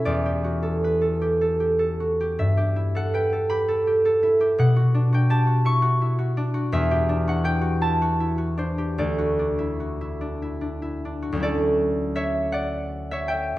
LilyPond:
<<
  \new Staff \with { instrumentName = "Harp" } { \time 6/8 \key d \major \tempo 4. = 54 << { <d'' e'' fis'' a''>2. | e''8. fis''16 g''8 b''4. | fis''8. g''16 a''8 cis'''4. | e''8. fis''16 g''8 a''4 c''8 |
d''2. | <a' d''>4 <cis'' e''>8 <d'' fis''>8. <cis'' e''>16 <e'' g''>8 | } \\ { <e, d' e' a'>16 g'16 fis'16 a'16 b'16 a'16 g'16 a'16 g'16 a'16 fis'16 g'16 | g,16 g'16 e'16 a'16 b'16 a'16 g'16 a'16 g'16 a'16 e'16 g'16 | b,16 fis'16 d'16 fis'16 g'16 fis'16 e'16 fis'16 e'16 fis'16 d'16 fis'16 | e,16 g'16 d'16 fis'16 g'16 fis'16 e'16 fis'16 e'16 fis'16 d'16 g'16 |
d,16 fis'16 d'16 e'16 fis'16 e'16 d'16 e'16 d'16 e'16 d'16 fis'16~ | fis'2. | } >> }
  \new Staff \with { instrumentName = "Harp" } { \time 6/8 \key d \major r2. | r2. | r2. | r2. |
r2. | <d, fis cis' e'>2. | }
>>